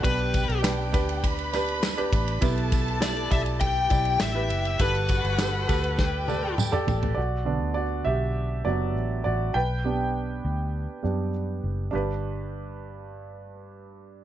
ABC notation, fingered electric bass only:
X:1
M:4/4
L:1/16
Q:1/4=101
K:G
V:1 name="Fingered electric bass" clef=bass
B,,,3 B,,,3 D,,8 A,,,2 | B,,,6 B,,,4 B,,,2 A,,,2 F,,,2 | G,,,3 G,,,3 D,,8 A,,,2 | B,,,3 D,,3 B,,,4 F,,,2 A,,,2 A,,,2 |
B,,,6 D,,3 z F,,4 F,,,2 | G,,,16 |]